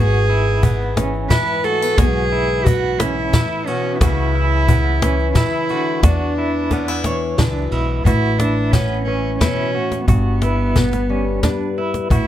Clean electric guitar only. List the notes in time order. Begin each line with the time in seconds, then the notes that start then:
Already playing: F#4
0.29 E4
0.63 B3
0.97 C#4
1.31 E4
1.64 F#4
1.98 F#4
2.32 E4
2.67 B3
3.00 C#4
3.35 E4
3.68 F#4
4.02 F#4
4.35 E4
4.69 B3
5.03 C#4
5.37 E4
5.70 F#4
6.04 F#4
6.38 E4
6.72 B3
7.06 C#5
7.39 D4
7.73 E4
8.06 F#4
8.41 E4
8.74 B3
9.08 C#4
9.41 E4
9.75 F#4
10.09 F#4
10.43 E4
10.77 B3
11.10 C#4
11.44 D4
11.78 E4
12.11 F#4